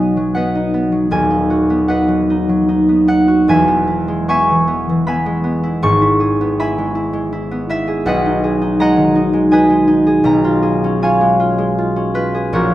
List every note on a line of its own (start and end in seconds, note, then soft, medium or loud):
0.00 1.15 B1 medium
0.00 1.16 B2 medium
0.00 0.16 F#3 medium
0.00 0.34 B3 medium
0.00 0.54 D#4 medium
0.00 1.49 F#4 medium
0.00 0.35 B4 medium
0.00 0.35 D#5 medium
0.00 0.33 F#5 medium
0.00 0.91 G#5 loud
0.17 0.91 F#3 medium
0.35 0.73 B3 medium
0.35 1.89 B4 medium
0.35 1.88 D#5 medium
0.35 1.87 F#5 medium
0.55 1.29 D#4 medium
0.74 1.69 B3 medium
0.92 2.07 F#3 medium
1.11 3.50 D#1 medium
1.11 3.51 D#2 medium
1.11 2.45 G#5 loud
1.30 1.87 D#4 medium
1.50 3.27 F#4 medium
1.70 2.87 B3 medium
1.88 2.29 D#4 medium
1.88 3.49 B4 medium
1.88 3.51 D#5 medium
1.88 3.07 F#5 loud
2.08 2.48 F#3 medium
2.30 2.67 D#4 medium
2.49 3.51 F#3 medium
2.69 3.06 D#4 medium
2.89 3.67 B3 medium
3.08 3.51 D#4 medium
3.08 3.51 F#5 loud
3.28 3.51 F#4 medium
3.48 5.85 E1 medium
3.48 5.85 E2 medium
3.48 7.40 B4 medium
3.48 4.29 E5 medium
3.48 4.28 G#5 loud
3.68 4.27 B3 medium
3.87 5.62 E4 medium
4.08 5.25 G#3 medium
4.28 4.66 B3 medium
4.28 5.07 E5 loud
4.28 5.07 G#5 medium
4.28 5.58 C#6 loud
4.50 4.88 E3 medium
4.67 5.06 B3 medium
4.89 5.85 E3 medium
5.07 5.43 B3 medium
5.07 6.59 E5 medium
5.07 6.59 G#5 medium
5.07 6.58 B5 loud
5.26 6.77 G#3 medium
5.44 6.40 B3 medium
5.63 6.00 E4 medium
5.82 8.08 G#1 medium
5.82 8.09 G#2 medium
5.82 7.09 C#6 loud
6.02 6.59 E4 medium
6.20 7.86 G#4 medium
6.41 7.50 B3 medium
6.60 6.94 E4 medium
6.60 7.69 E5 medium
6.60 9.50 G#5 medium
6.60 10.50 B5 loud
6.78 7.12 G#3 medium
6.95 7.31 E4 medium
7.13 8.78 G#3 medium
7.33 7.68 E4 medium
7.51 11.41 B3 medium
7.69 8.09 E4 medium
7.69 8.09 E5 loud
7.88 8.42 G#4 medium
8.06 10.23 B1 medium
8.06 10.23 B2 medium
8.06 9.52 B4 medium
8.06 8.80 D#5 medium
8.06 8.80 F#5 loud
8.26 8.60 D#4 medium
8.44 10.05 G#4 medium
8.62 9.14 D#4 medium
8.80 9.32 G#3 medium
8.80 9.51 D#5 loud
8.80 10.30 F#5 loud
8.80 10.04 A#5 loud
8.97 10.29 D#3 medium
9.15 9.50 D#4 medium
9.33 9.68 G#3 medium
9.51 9.86 D#4 medium
9.51 12.14 B4 medium
9.51 10.29 D#5 medium
9.51 11.01 G#5 loud
9.70 11.20 G#3 medium
9.88 10.29 D#4 medium
10.07 10.61 G#4 medium
10.24 12.55 B1 medium
10.24 12.56 B2 medium
10.24 11.54 A#5 loud
10.44 11.01 F4 medium
10.62 12.33 G#4 medium
10.84 11.95 C#4 medium
11.02 11.39 F4 medium
11.02 12.52 C#5 medium
11.02 12.57 F5 medium
11.02 12.57 G#5 loud
11.21 11.57 G#3 medium
11.40 11.77 F4 medium
11.58 12.57 G#3 medium
11.78 12.13 F4 medium
11.96 12.74 C#4 medium
12.14 12.56 F4 medium
12.14 12.57 B4 loud
12.35 12.57 G#4 medium
12.53 12.74 A#1 medium
12.53 12.74 A#2 medium
12.53 12.74 F#4 medium
12.53 12.74 A#4 medium
12.53 12.74 C#5 loud